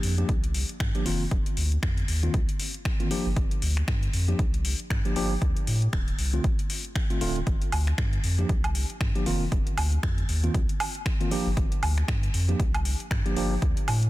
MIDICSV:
0, 0, Header, 1, 4, 480
1, 0, Start_track
1, 0, Key_signature, -2, "minor"
1, 0, Tempo, 512821
1, 1230, Time_signature, 4, 2, 24, 8
1, 13196, End_track
2, 0, Start_track
2, 0, Title_t, "Tine electric piano"
2, 0, Program_c, 0, 4
2, 0, Note_on_c, 0, 53, 84
2, 0, Note_on_c, 0, 58, 79
2, 0, Note_on_c, 0, 62, 78
2, 0, Note_on_c, 0, 67, 93
2, 134, Note_off_c, 0, 53, 0
2, 135, Note_off_c, 0, 58, 0
2, 135, Note_off_c, 0, 62, 0
2, 136, Note_off_c, 0, 67, 0
2, 167, Note_on_c, 0, 53, 73
2, 168, Note_on_c, 0, 58, 67
2, 169, Note_on_c, 0, 62, 67
2, 170, Note_on_c, 0, 67, 82
2, 301, Note_off_c, 0, 53, 0
2, 301, Note_off_c, 0, 58, 0
2, 302, Note_off_c, 0, 62, 0
2, 302, Note_off_c, 0, 67, 0
2, 887, Note_on_c, 0, 53, 79
2, 888, Note_on_c, 0, 58, 75
2, 889, Note_on_c, 0, 62, 78
2, 890, Note_on_c, 0, 67, 91
2, 965, Note_off_c, 0, 53, 0
2, 965, Note_off_c, 0, 58, 0
2, 966, Note_off_c, 0, 62, 0
2, 966, Note_off_c, 0, 67, 0
2, 989, Note_on_c, 0, 51, 91
2, 989, Note_on_c, 0, 58, 82
2, 990, Note_on_c, 0, 60, 85
2, 991, Note_on_c, 0, 65, 100
2, 1151, Note_off_c, 0, 51, 0
2, 1151, Note_off_c, 0, 58, 0
2, 1152, Note_off_c, 0, 60, 0
2, 1152, Note_off_c, 0, 65, 0
2, 2087, Note_on_c, 0, 51, 73
2, 2088, Note_on_c, 0, 58, 71
2, 2089, Note_on_c, 0, 60, 69
2, 2089, Note_on_c, 0, 65, 82
2, 2221, Note_off_c, 0, 51, 0
2, 2221, Note_off_c, 0, 58, 0
2, 2222, Note_off_c, 0, 60, 0
2, 2222, Note_off_c, 0, 65, 0
2, 2807, Note_on_c, 0, 51, 82
2, 2808, Note_on_c, 0, 58, 75
2, 2809, Note_on_c, 0, 60, 79
2, 2809, Note_on_c, 0, 65, 93
2, 2885, Note_off_c, 0, 51, 0
2, 2885, Note_off_c, 0, 58, 0
2, 2885, Note_off_c, 0, 60, 0
2, 2886, Note_off_c, 0, 65, 0
2, 2908, Note_on_c, 0, 53, 93
2, 2909, Note_on_c, 0, 58, 84
2, 2910, Note_on_c, 0, 62, 85
2, 2911, Note_on_c, 0, 67, 103
2, 3071, Note_off_c, 0, 53, 0
2, 3071, Note_off_c, 0, 58, 0
2, 3072, Note_off_c, 0, 62, 0
2, 3072, Note_off_c, 0, 67, 0
2, 4007, Note_on_c, 0, 53, 75
2, 4008, Note_on_c, 0, 58, 65
2, 4009, Note_on_c, 0, 62, 71
2, 4009, Note_on_c, 0, 67, 80
2, 4141, Note_off_c, 0, 53, 0
2, 4141, Note_off_c, 0, 58, 0
2, 4141, Note_off_c, 0, 62, 0
2, 4142, Note_off_c, 0, 67, 0
2, 4728, Note_on_c, 0, 53, 85
2, 4728, Note_on_c, 0, 58, 74
2, 4729, Note_on_c, 0, 62, 74
2, 4730, Note_on_c, 0, 67, 92
2, 4805, Note_off_c, 0, 53, 0
2, 4805, Note_off_c, 0, 58, 0
2, 4806, Note_off_c, 0, 62, 0
2, 4806, Note_off_c, 0, 67, 0
2, 4829, Note_on_c, 0, 53, 89
2, 4830, Note_on_c, 0, 58, 83
2, 4830, Note_on_c, 0, 62, 84
2, 4831, Note_on_c, 0, 67, 106
2, 4991, Note_off_c, 0, 53, 0
2, 4991, Note_off_c, 0, 58, 0
2, 4992, Note_off_c, 0, 62, 0
2, 4992, Note_off_c, 0, 67, 0
2, 5928, Note_on_c, 0, 50, 76
2, 5928, Note_on_c, 0, 57, 68
2, 5929, Note_on_c, 0, 60, 72
2, 5930, Note_on_c, 0, 65, 83
2, 6061, Note_off_c, 0, 50, 0
2, 6061, Note_off_c, 0, 57, 0
2, 6062, Note_off_c, 0, 60, 0
2, 6062, Note_off_c, 0, 65, 0
2, 6647, Note_on_c, 0, 50, 83
2, 6648, Note_on_c, 0, 57, 78
2, 6649, Note_on_c, 0, 60, 79
2, 6650, Note_on_c, 0, 65, 88
2, 6725, Note_off_c, 0, 50, 0
2, 6725, Note_off_c, 0, 57, 0
2, 6726, Note_off_c, 0, 60, 0
2, 6726, Note_off_c, 0, 65, 0
2, 6749, Note_on_c, 0, 50, 92
2, 6750, Note_on_c, 0, 57, 82
2, 6750, Note_on_c, 0, 60, 82
2, 6751, Note_on_c, 0, 65, 104
2, 6911, Note_off_c, 0, 50, 0
2, 6912, Note_off_c, 0, 57, 0
2, 6912, Note_off_c, 0, 60, 0
2, 6912, Note_off_c, 0, 65, 0
2, 7847, Note_on_c, 0, 53, 75
2, 7848, Note_on_c, 0, 58, 69
2, 7849, Note_on_c, 0, 62, 67
2, 7850, Note_on_c, 0, 67, 81
2, 7981, Note_off_c, 0, 53, 0
2, 7981, Note_off_c, 0, 58, 0
2, 7982, Note_off_c, 0, 62, 0
2, 7982, Note_off_c, 0, 67, 0
2, 8567, Note_on_c, 0, 53, 84
2, 8568, Note_on_c, 0, 58, 78
2, 8569, Note_on_c, 0, 62, 79
2, 8570, Note_on_c, 0, 67, 93
2, 8645, Note_off_c, 0, 53, 0
2, 8645, Note_off_c, 0, 58, 0
2, 8646, Note_off_c, 0, 62, 0
2, 8646, Note_off_c, 0, 67, 0
2, 8668, Note_on_c, 0, 51, 91
2, 8669, Note_on_c, 0, 58, 83
2, 8670, Note_on_c, 0, 60, 84
2, 8671, Note_on_c, 0, 65, 103
2, 8831, Note_off_c, 0, 51, 0
2, 8831, Note_off_c, 0, 58, 0
2, 8832, Note_off_c, 0, 60, 0
2, 8832, Note_off_c, 0, 65, 0
2, 9768, Note_on_c, 0, 51, 78
2, 9768, Note_on_c, 0, 58, 70
2, 9769, Note_on_c, 0, 60, 67
2, 9770, Note_on_c, 0, 65, 84
2, 9901, Note_off_c, 0, 51, 0
2, 9901, Note_off_c, 0, 58, 0
2, 9902, Note_off_c, 0, 60, 0
2, 9902, Note_off_c, 0, 65, 0
2, 10487, Note_on_c, 0, 51, 86
2, 10488, Note_on_c, 0, 58, 80
2, 10489, Note_on_c, 0, 60, 80
2, 10489, Note_on_c, 0, 65, 97
2, 10565, Note_off_c, 0, 51, 0
2, 10565, Note_off_c, 0, 58, 0
2, 10565, Note_off_c, 0, 60, 0
2, 10566, Note_off_c, 0, 65, 0
2, 10588, Note_on_c, 0, 53, 98
2, 10589, Note_on_c, 0, 58, 86
2, 10590, Note_on_c, 0, 62, 86
2, 10590, Note_on_c, 0, 67, 107
2, 10751, Note_off_c, 0, 53, 0
2, 10751, Note_off_c, 0, 58, 0
2, 10751, Note_off_c, 0, 62, 0
2, 10752, Note_off_c, 0, 67, 0
2, 11687, Note_on_c, 0, 53, 76
2, 11688, Note_on_c, 0, 58, 72
2, 11688, Note_on_c, 0, 62, 66
2, 11689, Note_on_c, 0, 67, 82
2, 11820, Note_off_c, 0, 53, 0
2, 11821, Note_off_c, 0, 58, 0
2, 11821, Note_off_c, 0, 62, 0
2, 11822, Note_off_c, 0, 67, 0
2, 12407, Note_on_c, 0, 53, 87
2, 12408, Note_on_c, 0, 58, 80
2, 12408, Note_on_c, 0, 62, 78
2, 12409, Note_on_c, 0, 67, 93
2, 12485, Note_off_c, 0, 53, 0
2, 12485, Note_off_c, 0, 58, 0
2, 12485, Note_off_c, 0, 62, 0
2, 12486, Note_off_c, 0, 67, 0
2, 12509, Note_on_c, 0, 53, 94
2, 12509, Note_on_c, 0, 58, 86
2, 12510, Note_on_c, 0, 62, 89
2, 12511, Note_on_c, 0, 67, 104
2, 12671, Note_off_c, 0, 53, 0
2, 12671, Note_off_c, 0, 58, 0
2, 12672, Note_off_c, 0, 62, 0
2, 12672, Note_off_c, 0, 67, 0
2, 13196, End_track
3, 0, Start_track
3, 0, Title_t, "Sub bass"
3, 0, Program_c, 1, 38
3, 30, Note_on_c, 1, 41, 82
3, 223, Note_off_c, 1, 41, 0
3, 270, Note_on_c, 1, 36, 80
3, 597, Note_off_c, 1, 36, 0
3, 750, Note_on_c, 1, 43, 79
3, 856, Note_off_c, 1, 43, 0
3, 990, Note_on_c, 1, 29, 96
3, 1182, Note_off_c, 1, 29, 0
3, 1230, Note_on_c, 1, 29, 97
3, 1336, Note_off_c, 1, 29, 0
3, 1470, Note_on_c, 1, 38, 98
3, 1662, Note_off_c, 1, 38, 0
3, 1710, Note_on_c, 1, 41, 92
3, 1903, Note_off_c, 1, 41, 0
3, 1950, Note_on_c, 1, 39, 84
3, 2143, Note_off_c, 1, 39, 0
3, 2190, Note_on_c, 1, 36, 87
3, 2296, Note_off_c, 1, 36, 0
3, 3048, Note_on_c, 1, 31, 96
3, 3126, Note_off_c, 1, 31, 0
3, 3150, Note_on_c, 1, 31, 100
3, 3256, Note_off_c, 1, 31, 0
3, 3390, Note_on_c, 1, 38, 100
3, 3582, Note_off_c, 1, 38, 0
3, 3630, Note_on_c, 1, 43, 90
3, 3823, Note_off_c, 1, 43, 0
3, 3869, Note_on_c, 1, 41, 88
3, 4062, Note_off_c, 1, 41, 0
3, 4110, Note_on_c, 1, 36, 83
3, 4437, Note_off_c, 1, 36, 0
3, 4590, Note_on_c, 1, 43, 77
3, 4696, Note_off_c, 1, 43, 0
3, 4830, Note_on_c, 1, 31, 97
3, 5022, Note_off_c, 1, 31, 0
3, 5070, Note_on_c, 1, 38, 97
3, 5176, Note_off_c, 1, 38, 0
3, 5309, Note_on_c, 1, 45, 100
3, 5502, Note_off_c, 1, 45, 0
3, 5550, Note_on_c, 1, 26, 89
3, 5743, Note_off_c, 1, 26, 0
3, 5790, Note_on_c, 1, 36, 86
3, 5983, Note_off_c, 1, 36, 0
3, 6030, Note_on_c, 1, 33, 82
3, 6136, Note_off_c, 1, 33, 0
3, 6750, Note_on_c, 1, 26, 90
3, 6942, Note_off_c, 1, 26, 0
3, 6990, Note_on_c, 1, 31, 97
3, 7096, Note_off_c, 1, 31, 0
3, 7230, Note_on_c, 1, 38, 101
3, 7422, Note_off_c, 1, 38, 0
3, 7470, Note_on_c, 1, 43, 93
3, 7663, Note_off_c, 1, 43, 0
3, 7710, Note_on_c, 1, 41, 85
3, 7902, Note_off_c, 1, 41, 0
3, 7950, Note_on_c, 1, 36, 84
3, 8277, Note_off_c, 1, 36, 0
3, 8430, Note_on_c, 1, 43, 80
3, 8536, Note_off_c, 1, 43, 0
3, 8670, Note_on_c, 1, 29, 97
3, 8863, Note_off_c, 1, 29, 0
3, 8910, Note_on_c, 1, 29, 93
3, 9016, Note_off_c, 1, 29, 0
3, 9149, Note_on_c, 1, 38, 98
3, 9342, Note_off_c, 1, 38, 0
3, 9390, Note_on_c, 1, 41, 89
3, 9582, Note_off_c, 1, 41, 0
3, 9630, Note_on_c, 1, 39, 86
3, 9822, Note_off_c, 1, 39, 0
3, 9870, Note_on_c, 1, 36, 85
3, 9976, Note_off_c, 1, 36, 0
3, 10728, Note_on_c, 1, 31, 104
3, 10806, Note_off_c, 1, 31, 0
3, 10830, Note_on_c, 1, 31, 97
3, 10936, Note_off_c, 1, 31, 0
3, 11070, Note_on_c, 1, 38, 103
3, 11262, Note_off_c, 1, 38, 0
3, 11310, Note_on_c, 1, 43, 93
3, 11502, Note_off_c, 1, 43, 0
3, 11549, Note_on_c, 1, 41, 89
3, 11742, Note_off_c, 1, 41, 0
3, 11789, Note_on_c, 1, 36, 86
3, 12117, Note_off_c, 1, 36, 0
3, 12270, Note_on_c, 1, 43, 79
3, 12376, Note_off_c, 1, 43, 0
3, 12510, Note_on_c, 1, 31, 100
3, 12702, Note_off_c, 1, 31, 0
3, 12750, Note_on_c, 1, 38, 96
3, 12856, Note_off_c, 1, 38, 0
3, 12990, Note_on_c, 1, 45, 101
3, 13182, Note_off_c, 1, 45, 0
3, 13196, End_track
4, 0, Start_track
4, 0, Title_t, "Drums"
4, 30, Note_on_c, 9, 46, 100
4, 124, Note_off_c, 9, 46, 0
4, 169, Note_on_c, 9, 42, 36
4, 262, Note_off_c, 9, 42, 0
4, 270, Note_on_c, 9, 36, 114
4, 270, Note_on_c, 9, 42, 77
4, 363, Note_off_c, 9, 36, 0
4, 364, Note_off_c, 9, 42, 0
4, 408, Note_on_c, 9, 42, 53
4, 502, Note_off_c, 9, 42, 0
4, 510, Note_on_c, 9, 46, 109
4, 603, Note_off_c, 9, 46, 0
4, 648, Note_on_c, 9, 42, 36
4, 742, Note_off_c, 9, 42, 0
4, 750, Note_on_c, 9, 36, 111
4, 750, Note_on_c, 9, 42, 85
4, 751, Note_on_c, 9, 26, 120
4, 843, Note_off_c, 9, 36, 0
4, 843, Note_off_c, 9, 42, 0
4, 844, Note_off_c, 9, 26, 0
4, 889, Note_on_c, 9, 42, 52
4, 982, Note_off_c, 9, 42, 0
4, 990, Note_on_c, 9, 46, 101
4, 1084, Note_off_c, 9, 46, 0
4, 1230, Note_on_c, 9, 36, 125
4, 1230, Note_on_c, 9, 42, 74
4, 1323, Note_off_c, 9, 36, 0
4, 1324, Note_off_c, 9, 42, 0
4, 1368, Note_on_c, 9, 42, 53
4, 1462, Note_off_c, 9, 42, 0
4, 1470, Note_on_c, 9, 46, 102
4, 1563, Note_off_c, 9, 46, 0
4, 1609, Note_on_c, 9, 42, 38
4, 1702, Note_off_c, 9, 42, 0
4, 1710, Note_on_c, 9, 36, 121
4, 1710, Note_on_c, 9, 42, 76
4, 1711, Note_on_c, 9, 26, 117
4, 1803, Note_off_c, 9, 36, 0
4, 1804, Note_off_c, 9, 42, 0
4, 1805, Note_off_c, 9, 26, 0
4, 1849, Note_on_c, 9, 42, 52
4, 1942, Note_off_c, 9, 42, 0
4, 1949, Note_on_c, 9, 46, 105
4, 2043, Note_off_c, 9, 46, 0
4, 2189, Note_on_c, 9, 42, 77
4, 2190, Note_on_c, 9, 36, 119
4, 2283, Note_off_c, 9, 36, 0
4, 2283, Note_off_c, 9, 42, 0
4, 2328, Note_on_c, 9, 42, 54
4, 2422, Note_off_c, 9, 42, 0
4, 2429, Note_on_c, 9, 46, 107
4, 2523, Note_off_c, 9, 46, 0
4, 2568, Note_on_c, 9, 42, 37
4, 2662, Note_off_c, 9, 42, 0
4, 2670, Note_on_c, 9, 26, 121
4, 2670, Note_on_c, 9, 36, 113
4, 2670, Note_on_c, 9, 42, 81
4, 2763, Note_off_c, 9, 36, 0
4, 2763, Note_off_c, 9, 42, 0
4, 2764, Note_off_c, 9, 26, 0
4, 2808, Note_on_c, 9, 42, 53
4, 2902, Note_off_c, 9, 42, 0
4, 2910, Note_on_c, 9, 46, 108
4, 3003, Note_off_c, 9, 46, 0
4, 3150, Note_on_c, 9, 36, 125
4, 3150, Note_on_c, 9, 42, 74
4, 3243, Note_off_c, 9, 36, 0
4, 3243, Note_off_c, 9, 42, 0
4, 3288, Note_on_c, 9, 42, 53
4, 3382, Note_off_c, 9, 42, 0
4, 3390, Note_on_c, 9, 46, 104
4, 3483, Note_off_c, 9, 46, 0
4, 3528, Note_on_c, 9, 42, 36
4, 3529, Note_on_c, 9, 26, 39
4, 3622, Note_off_c, 9, 42, 0
4, 3623, Note_off_c, 9, 26, 0
4, 3630, Note_on_c, 9, 26, 120
4, 3630, Note_on_c, 9, 36, 126
4, 3630, Note_on_c, 9, 42, 72
4, 3723, Note_off_c, 9, 36, 0
4, 3723, Note_off_c, 9, 42, 0
4, 3724, Note_off_c, 9, 26, 0
4, 3769, Note_on_c, 9, 42, 50
4, 3862, Note_off_c, 9, 42, 0
4, 3870, Note_on_c, 9, 46, 105
4, 3964, Note_off_c, 9, 46, 0
4, 4009, Note_on_c, 9, 42, 36
4, 4102, Note_off_c, 9, 42, 0
4, 4110, Note_on_c, 9, 36, 122
4, 4110, Note_on_c, 9, 42, 73
4, 4203, Note_off_c, 9, 36, 0
4, 4204, Note_off_c, 9, 42, 0
4, 4249, Note_on_c, 9, 42, 52
4, 4342, Note_off_c, 9, 42, 0
4, 4350, Note_on_c, 9, 46, 107
4, 4444, Note_off_c, 9, 46, 0
4, 4489, Note_on_c, 9, 42, 34
4, 4582, Note_off_c, 9, 42, 0
4, 4590, Note_on_c, 9, 36, 119
4, 4590, Note_on_c, 9, 42, 78
4, 4591, Note_on_c, 9, 26, 122
4, 4683, Note_off_c, 9, 36, 0
4, 4684, Note_off_c, 9, 42, 0
4, 4685, Note_off_c, 9, 26, 0
4, 4729, Note_on_c, 9, 42, 52
4, 4823, Note_off_c, 9, 42, 0
4, 4830, Note_on_c, 9, 46, 110
4, 4924, Note_off_c, 9, 46, 0
4, 5070, Note_on_c, 9, 36, 122
4, 5070, Note_on_c, 9, 42, 74
4, 5164, Note_off_c, 9, 36, 0
4, 5164, Note_off_c, 9, 42, 0
4, 5209, Note_on_c, 9, 42, 49
4, 5303, Note_off_c, 9, 42, 0
4, 5310, Note_on_c, 9, 46, 107
4, 5404, Note_off_c, 9, 46, 0
4, 5449, Note_on_c, 9, 42, 34
4, 5543, Note_off_c, 9, 42, 0
4, 5550, Note_on_c, 9, 36, 119
4, 5550, Note_on_c, 9, 42, 75
4, 5551, Note_on_c, 9, 26, 112
4, 5644, Note_off_c, 9, 36, 0
4, 5644, Note_off_c, 9, 42, 0
4, 5645, Note_off_c, 9, 26, 0
4, 5689, Note_on_c, 9, 42, 49
4, 5782, Note_off_c, 9, 42, 0
4, 5790, Note_on_c, 9, 46, 106
4, 5883, Note_off_c, 9, 46, 0
4, 5929, Note_on_c, 9, 42, 32
4, 6022, Note_off_c, 9, 42, 0
4, 6030, Note_on_c, 9, 36, 119
4, 6030, Note_on_c, 9, 42, 73
4, 6123, Note_off_c, 9, 36, 0
4, 6123, Note_off_c, 9, 42, 0
4, 6168, Note_on_c, 9, 42, 52
4, 6262, Note_off_c, 9, 42, 0
4, 6270, Note_on_c, 9, 46, 110
4, 6363, Note_off_c, 9, 46, 0
4, 6408, Note_on_c, 9, 42, 35
4, 6502, Note_off_c, 9, 42, 0
4, 6509, Note_on_c, 9, 42, 74
4, 6510, Note_on_c, 9, 26, 116
4, 6510, Note_on_c, 9, 36, 117
4, 6603, Note_off_c, 9, 36, 0
4, 6603, Note_off_c, 9, 42, 0
4, 6604, Note_off_c, 9, 26, 0
4, 6648, Note_on_c, 9, 42, 50
4, 6742, Note_off_c, 9, 42, 0
4, 6749, Note_on_c, 9, 46, 101
4, 6843, Note_off_c, 9, 46, 0
4, 6888, Note_on_c, 9, 42, 34
4, 6982, Note_off_c, 9, 42, 0
4, 6990, Note_on_c, 9, 36, 118
4, 6990, Note_on_c, 9, 42, 73
4, 7083, Note_off_c, 9, 36, 0
4, 7083, Note_off_c, 9, 42, 0
4, 7128, Note_on_c, 9, 42, 51
4, 7222, Note_off_c, 9, 42, 0
4, 7230, Note_on_c, 9, 46, 99
4, 7230, Note_on_c, 9, 76, 66
4, 7323, Note_off_c, 9, 46, 0
4, 7323, Note_off_c, 9, 76, 0
4, 7368, Note_on_c, 9, 42, 35
4, 7369, Note_on_c, 9, 26, 34
4, 7462, Note_off_c, 9, 42, 0
4, 7463, Note_off_c, 9, 26, 0
4, 7469, Note_on_c, 9, 42, 73
4, 7470, Note_on_c, 9, 26, 114
4, 7470, Note_on_c, 9, 36, 118
4, 7563, Note_off_c, 9, 36, 0
4, 7563, Note_off_c, 9, 42, 0
4, 7564, Note_off_c, 9, 26, 0
4, 7608, Note_on_c, 9, 42, 49
4, 7702, Note_off_c, 9, 42, 0
4, 7710, Note_on_c, 9, 46, 100
4, 7803, Note_off_c, 9, 46, 0
4, 7849, Note_on_c, 9, 42, 34
4, 7942, Note_off_c, 9, 42, 0
4, 7950, Note_on_c, 9, 36, 112
4, 7950, Note_on_c, 9, 42, 72
4, 8043, Note_off_c, 9, 36, 0
4, 8043, Note_off_c, 9, 42, 0
4, 8088, Note_on_c, 9, 42, 51
4, 8088, Note_on_c, 9, 76, 66
4, 8182, Note_off_c, 9, 42, 0
4, 8182, Note_off_c, 9, 76, 0
4, 8190, Note_on_c, 9, 46, 106
4, 8283, Note_off_c, 9, 46, 0
4, 8328, Note_on_c, 9, 42, 34
4, 8422, Note_off_c, 9, 42, 0
4, 8430, Note_on_c, 9, 36, 115
4, 8430, Note_on_c, 9, 42, 75
4, 8431, Note_on_c, 9, 26, 111
4, 8523, Note_off_c, 9, 36, 0
4, 8523, Note_off_c, 9, 42, 0
4, 8524, Note_off_c, 9, 26, 0
4, 8568, Note_on_c, 9, 42, 49
4, 8662, Note_off_c, 9, 42, 0
4, 8670, Note_on_c, 9, 46, 99
4, 8763, Note_off_c, 9, 46, 0
4, 8910, Note_on_c, 9, 36, 112
4, 8910, Note_on_c, 9, 42, 75
4, 9003, Note_off_c, 9, 36, 0
4, 9003, Note_off_c, 9, 42, 0
4, 9048, Note_on_c, 9, 42, 52
4, 9142, Note_off_c, 9, 42, 0
4, 9150, Note_on_c, 9, 46, 99
4, 9150, Note_on_c, 9, 76, 66
4, 9243, Note_off_c, 9, 46, 0
4, 9243, Note_off_c, 9, 76, 0
4, 9288, Note_on_c, 9, 42, 36
4, 9382, Note_off_c, 9, 42, 0
4, 9390, Note_on_c, 9, 36, 112
4, 9390, Note_on_c, 9, 42, 71
4, 9391, Note_on_c, 9, 26, 110
4, 9483, Note_off_c, 9, 36, 0
4, 9484, Note_off_c, 9, 26, 0
4, 9484, Note_off_c, 9, 42, 0
4, 9529, Note_on_c, 9, 42, 50
4, 9622, Note_off_c, 9, 42, 0
4, 9630, Note_on_c, 9, 46, 93
4, 9724, Note_off_c, 9, 46, 0
4, 9769, Note_on_c, 9, 42, 35
4, 9862, Note_off_c, 9, 42, 0
4, 9870, Note_on_c, 9, 36, 110
4, 9870, Note_on_c, 9, 42, 77
4, 9963, Note_off_c, 9, 36, 0
4, 9964, Note_off_c, 9, 42, 0
4, 10008, Note_on_c, 9, 42, 51
4, 10102, Note_off_c, 9, 42, 0
4, 10110, Note_on_c, 9, 46, 107
4, 10110, Note_on_c, 9, 76, 88
4, 10204, Note_off_c, 9, 46, 0
4, 10204, Note_off_c, 9, 76, 0
4, 10249, Note_on_c, 9, 42, 36
4, 10342, Note_off_c, 9, 42, 0
4, 10350, Note_on_c, 9, 36, 111
4, 10350, Note_on_c, 9, 42, 77
4, 10351, Note_on_c, 9, 26, 114
4, 10443, Note_off_c, 9, 36, 0
4, 10444, Note_off_c, 9, 26, 0
4, 10444, Note_off_c, 9, 42, 0
4, 10489, Note_on_c, 9, 42, 52
4, 10582, Note_off_c, 9, 42, 0
4, 10590, Note_on_c, 9, 46, 101
4, 10683, Note_off_c, 9, 46, 0
4, 10830, Note_on_c, 9, 36, 111
4, 10830, Note_on_c, 9, 42, 82
4, 10923, Note_off_c, 9, 36, 0
4, 10923, Note_off_c, 9, 42, 0
4, 10969, Note_on_c, 9, 42, 52
4, 11062, Note_off_c, 9, 42, 0
4, 11070, Note_on_c, 9, 46, 97
4, 11070, Note_on_c, 9, 76, 63
4, 11164, Note_off_c, 9, 46, 0
4, 11164, Note_off_c, 9, 76, 0
4, 11209, Note_on_c, 9, 42, 36
4, 11210, Note_on_c, 9, 26, 36
4, 11302, Note_off_c, 9, 42, 0
4, 11303, Note_off_c, 9, 26, 0
4, 11309, Note_on_c, 9, 36, 109
4, 11310, Note_on_c, 9, 42, 81
4, 11311, Note_on_c, 9, 26, 112
4, 11403, Note_off_c, 9, 36, 0
4, 11404, Note_off_c, 9, 42, 0
4, 11405, Note_off_c, 9, 26, 0
4, 11449, Note_on_c, 9, 42, 53
4, 11542, Note_off_c, 9, 42, 0
4, 11550, Note_on_c, 9, 46, 94
4, 11644, Note_off_c, 9, 46, 0
4, 11689, Note_on_c, 9, 42, 35
4, 11783, Note_off_c, 9, 42, 0
4, 11789, Note_on_c, 9, 36, 110
4, 11790, Note_on_c, 9, 42, 76
4, 11883, Note_off_c, 9, 36, 0
4, 11884, Note_off_c, 9, 42, 0
4, 11929, Note_on_c, 9, 42, 57
4, 11929, Note_on_c, 9, 76, 65
4, 12023, Note_off_c, 9, 42, 0
4, 12023, Note_off_c, 9, 76, 0
4, 12030, Note_on_c, 9, 46, 101
4, 12124, Note_off_c, 9, 46, 0
4, 12169, Note_on_c, 9, 42, 35
4, 12262, Note_off_c, 9, 42, 0
4, 12270, Note_on_c, 9, 36, 109
4, 12270, Note_on_c, 9, 42, 82
4, 12271, Note_on_c, 9, 26, 120
4, 12363, Note_off_c, 9, 36, 0
4, 12364, Note_off_c, 9, 42, 0
4, 12365, Note_off_c, 9, 26, 0
4, 12409, Note_on_c, 9, 42, 55
4, 12502, Note_off_c, 9, 42, 0
4, 12510, Note_on_c, 9, 46, 95
4, 12604, Note_off_c, 9, 46, 0
4, 12750, Note_on_c, 9, 36, 118
4, 12750, Note_on_c, 9, 42, 81
4, 12843, Note_off_c, 9, 36, 0
4, 12843, Note_off_c, 9, 42, 0
4, 12889, Note_on_c, 9, 42, 54
4, 12982, Note_off_c, 9, 42, 0
4, 12990, Note_on_c, 9, 46, 100
4, 12990, Note_on_c, 9, 76, 65
4, 13084, Note_off_c, 9, 46, 0
4, 13084, Note_off_c, 9, 76, 0
4, 13129, Note_on_c, 9, 42, 37
4, 13196, Note_off_c, 9, 42, 0
4, 13196, End_track
0, 0, End_of_file